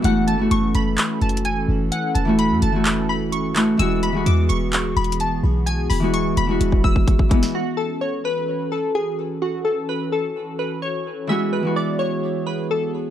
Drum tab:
HH |x-----x-----x-----x-----x-----x-x-x-x-----------|x-----x-----x-----x-----x-----------x-----x-----|x-----x-----x-----x-----x-----x-x-x-x-----------|x-----o-----x-----x-----x-----------x-----x-----|
CP |------------------------x-----------------------|------------------------x-----------------x-----|------------------------x-----------------------|------------------------------------------------|
SD |------------------------------------------------|------------------------------------------------|------------------------------------------------|---------------------------------------------o--|
BD |------------------------------------------------|------------------------------------------------|------------------------------------------------|---------------------------o--o--o--o--o--o-----|

HH |------------------------------------------------|------------------------------------------------|------------------------------------------------|
CP |------------------------------------------------|------------------------------------------------|------------------------------------------------|
SD |------------------------------------------------|------------------------------------------------|------------------------------------------------|
BD |------------------------------------------------|------------------------------------------------|------------------------------------------------|